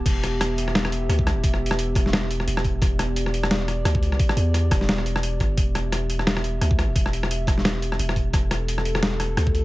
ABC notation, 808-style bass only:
X:1
M:4/4
L:1/8
Q:"Swing 16ths" 1/4=174
K:Em
V:1 name="808-style bass" clef=bass
E,,,6 D,,2 | E,,,6 E,,,2 | E,,,6 D,,2 | z E,,2 E,,,4 G,,, |
E,,,6 D,,2 | E,,,6 E,,,2 | E,,,6 D,,2 |]